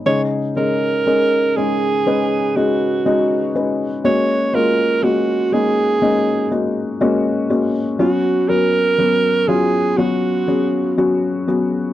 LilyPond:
<<
  \new Staff \with { instrumentName = "Alto saxophone" } { \time 4/4 \key cis \mixolydian \tempo 4 = 60 cis''8 ais'4 gis'4 fis'4 r8 | cis''8 ais'8 fis'8 gis'4 r4. | fis'8 ais'4 gis'8 fis'4 r4 | }
  \new Staff \with { instrumentName = "Felt piano" } { \time 4/4 \key cis \mixolydian <gis cis' dis' gis'>8 <gis cis' dis' gis'>8 <gis cis' dis' ais'>8 <gis cis' dis' gis'>8 <gis cis' dis' b'>8 <gis cis' dis' gis'>8 <gis cis' dis' fis'>8 <gis cis' dis' b'>8 | <gis ais cis' fis'>8 <gis ais cis' eis'>8 <gis ais cis' fis'>8 <gis ais cis' dis'>8 <gis ais cis' dis'>8 <gis ais cis' fis'>8 <gis ais cis' fis'>8 <gis ais cis' fis'>8 | <fis b cis' fis'>8 <fis b cis' fis'>8 <fis b cis' fis'>8 <fis b cis' eis'>8 <fis b cis' fis'>8 <fis b cis' gis'>8 <fis b cis' fis'>8 <fis b cis' fis'>8 | }
  \new Staff \with { instrumentName = "Felt piano" } { \clef bass \time 4/4 \key cis \mixolydian cis4. r2 r8 | r1 | r1 | }
>>